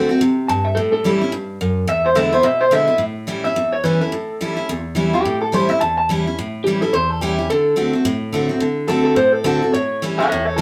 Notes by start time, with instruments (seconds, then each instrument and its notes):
0.09 steel-string acoustic guitar C4 F#4
0.21 steel-string acoustic guitar C3
0.48 steel-string acoustic guitar G2, clean electric guitar A5
0.65 clean electric guitar E5
0.75 steel-string acoustic guitar A2, clean electric guitar A4
0.93 clean electric guitar A4
1.04 steel-string acoustic guitar E3 G3 C#4 E4
1.22 steel-string acoustic guitar C#4 E4
1.32 steel-string acoustic guitar G2
1.61 steel-string acoustic guitar F#2
1.87 steel-string acoustic guitar E2, clean electric guitar E5
2.06 clean electric guitar C5
2.15 steel-string acoustic guitar D3 G#3 B3 E4, clean electric guitar E5
2.33 steel-string acoustic guitar B3 E4, clean electric guitar C5
2.43 steel-string acoustic guitar B2, clean electric guitar E5
2.61 clean electric guitar C5
2.71 steel-string acoustic guitar D3 G#3 B3 E4, clean electric guitar E5
2.87 steel-string acoustic guitar B3 E4
2.98 steel-string acoustic guitar A2
3.27 steel-string acoustic guitar E3 G3 C#4 E4
3.44 steel-string acoustic guitar C#4 E4, clean electric guitar E5
3.56 steel-string acoustic guitar E2
3.73 clean electric guitar C#5
3.84 steel-string acoustic guitar E3 G3 C#4 E4, clean electric guitar B4
4.01 steel-string acoustic guitar C#4 E4, clean electric guitar A4
4.12 steel-string acoustic guitar A2
4.41 steel-string acoustic guitar E3 G3 C#4 E4
4.57 steel-string acoustic guitar C#4 E4
4.69 steel-string acoustic guitar E2
4.95 steel-string acoustic guitar E3 G3 C#4 E4
5.13 steel-string acoustic guitar C#4 E4, clean electric guitar G4
5.25 steel-string acoustic guitar A2
5.42 clean electric guitar A4
5.52 steel-string acoustic guitar E3 G3 C#4 E4, clean electric guitar C5
5.69 steel-string acoustic guitar C#4 E4, clean electric guitar E5
5.81 steel-string acoustic guitar E2, clean electric guitar A5
5.98 clean electric guitar A5
6.09 steel-string acoustic guitar E3 G3 C#4 E4
6.27 steel-string acoustic guitar C#4 E4
6.39 steel-string acoustic guitar A2
6.64 steel-string acoustic guitar E3 G3 C#4, clean electric guitar G4
6.68 steel-string acoustic guitar E4
6.81 steel-string acoustic guitar C#4 E4, clean electric guitar A4
6.93 steel-string acoustic guitar E2, clean electric guitar C5
7.10 clean electric guitar A4
7.21 steel-string acoustic guitar E3 G3 C#4 E4, clean electric guitar G4
7.38 steel-string acoustic guitar C#4 E4
7.50 steel-string acoustic guitar D3, clean electric guitar A4
7.76 steel-string acoustic guitar D3 A3 C4 F#4
7.93 steel-string acoustic guitar C4 F#4
8.05 steel-string acoustic guitar A2
8.32 steel-string acoustic guitar D3 A3 C4 F#4
8.49 steel-string acoustic guitar C4 F#4
8.60 steel-string acoustic guitar D3
8.88 steel-string acoustic guitar D3 A3 C4 F#4, clean electric guitar A4
9.05 clean electric guitar A4
9.16 steel-string acoustic guitar A2, clean electric guitar C5
9.32 clean electric guitar A4
9.44 steel-string acoustic guitar D3 A3 C4 F#4, clean electric guitar A4
9.62 steel-string acoustic guitar C4 F#4
9.74 steel-string acoustic guitar A2, clean electric guitar C#5
10.02 steel-string acoustic guitar E3 G3 C#4 E4
10.18 steel-string acoustic guitar C#4 E4, clean electric guitar A4 F#5
10.29 steel-string acoustic guitar E2, clean electric guitar C#5 E5
10.45 clean electric guitar A4 C#5
10.56 steel-string acoustic guitar E3, clean electric guitar A4